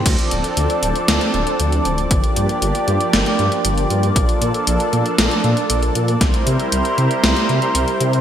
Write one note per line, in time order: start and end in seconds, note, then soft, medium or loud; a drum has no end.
0.06 0.16 D2 loud
0.06 6.17 F3 medium
0.06 2.09 C4 medium
0.06 2.09 D4 medium
0.06 2.09 A4 medium
0.06 6.17 D5 medium
0.06 kick loud
0.06 closed hi-hat medium
0.06 crash medium
0.19 closed hi-hat soft
0.31 0.42 D1 medium
0.31 closed hi-hat medium
0.44 closed hi-hat soft
0.57 0.67 D2 medium
0.57 closed hi-hat medium
0.70 closed hi-hat soft
0.83 0.93 D1 medium
0.83 closed hi-hat medium
0.96 closed hi-hat soft
1.08 1.19 D2 medium
1.08 snare loud
1.08 closed hi-hat medium
1.21 closed hi-hat soft
1.34 1.44 D1 medium
1.34 closed hi-hat soft
1.47 closed hi-hat soft
1.60 1.80 D2 medium
1.60 closed hi-hat medium
1.72 closed hi-hat soft
1.85 2.06 D1 medium
1.85 closed hi-hat medium
1.98 closed hi-hat soft
2.10 2.21 G1 loud
2.10 6.17 A#3 medium
2.10 4.14 D4 medium
2.10 4.14 G4 medium
2.10 kick loud
2.10 closed hi-hat medium
2.24 closed hi-hat soft
2.36 2.47 G2 medium
2.36 closed hi-hat medium
2.49 closed hi-hat soft
2.62 2.72 G1 medium
2.62 closed hi-hat medium
2.75 closed hi-hat soft
2.88 2.98 G2 medium
2.88 closed hi-hat medium
3.01 closed hi-hat soft
3.13 3.24 G1 medium
3.13 snare loud
3.13 closed hi-hat medium
3.26 closed hi-hat soft
3.39 3.49 G2 medium
3.39 closed hi-hat soft
3.52 closed hi-hat soft
3.65 3.85 G1 medium
3.65 closed hi-hat medium
3.78 closed hi-hat soft
3.90 4.11 G2 medium
3.90 closed hi-hat medium
4.03 closed hi-hat soft
4.16 4.26 A#1 loud
4.16 6.19 D4 medium
4.16 6.19 A4 medium
4.16 kick loud
4.16 closed hi-hat medium
4.29 closed hi-hat soft
4.42 4.52 A#2 medium
4.42 closed hi-hat medium
4.54 closed hi-hat soft
4.67 4.77 A#1 medium
4.67 closed hi-hat medium
4.80 closed hi-hat soft
4.93 5.03 A#2 medium
4.93 closed hi-hat medium
5.06 closed hi-hat soft
5.18 5.29 A#1 medium
5.18 snare loud
5.18 closed hi-hat medium
5.31 closed hi-hat soft
5.44 5.54 A#2 medium
5.44 closed hi-hat soft
5.57 closed hi-hat soft
5.70 5.90 A#1 medium
5.70 closed hi-hat medium
5.83 closed hi-hat soft
5.95 6.16 A#2 medium
5.95 closed hi-hat medium
6.08 closed hi-hat soft
6.21 6.31 C2 loud
6.21 8.21 G3 medium
6.21 8.21 C4 medium
6.21 8.21 E4 medium
6.21 8.21 A#4 medium
6.21 8.21 C5 medium
6.21 kick loud
6.21 snare medium
6.21 closed hi-hat medium
6.34 closed hi-hat soft
6.47 6.57 C3 medium
6.47 closed hi-hat medium
6.60 closed hi-hat soft
6.72 6.83 C2 medium
6.72 closed hi-hat medium
6.85 closed hi-hat soft
6.98 7.08 C3 medium
6.98 closed hi-hat medium
7.11 closed hi-hat soft
7.24 7.34 C2 medium
7.24 snare loud
7.24 closed hi-hat medium
7.37 closed hi-hat soft
7.49 7.59 C3 medium
7.49 closed hi-hat soft
7.62 closed hi-hat soft
7.75 7.85 C2 medium
7.75 closed hi-hat medium
7.88 closed hi-hat soft
8.01 8.21 C3 loud
8.01 closed hi-hat medium
8.13 closed hi-hat soft